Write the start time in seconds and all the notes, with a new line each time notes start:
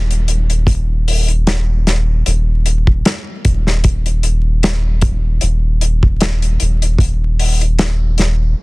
Already playing: D#1
0.11 closed hi-hat
0.28 closed hi-hat
0.50 closed hi-hat
0.67 D#1, kick, closed hi-hat
1.08 open hi-hat
1.28 closed hi-hat
1.47 snare, closed hi-hat
1.87 snare, closed hi-hat
2.26 D#1, closed hi-hat
2.66 closed hi-hat
2.87 kick
3.05 snare, closed hi-hat
3.45 D#1, kick, closed hi-hat
3.67 snare
3.84 kick, closed hi-hat
4.06 closed hi-hat
4.23 closed hi-hat
4.63 snare, closed hi-hat
5.01 kick, closed hi-hat
5.41 D#1, closed hi-hat
5.81 closed hi-hat
6.03 kick
6.21 snare, closed hi-hat
6.42 closed hi-hat
6.60 D#1, closed hi-hat
6.82 closed hi-hat
6.98 D#1, kick, closed hi-hat
7.39 open hi-hat
7.61 closed hi-hat
7.79 snare, closed hi-hat
8.18 snare, closed hi-hat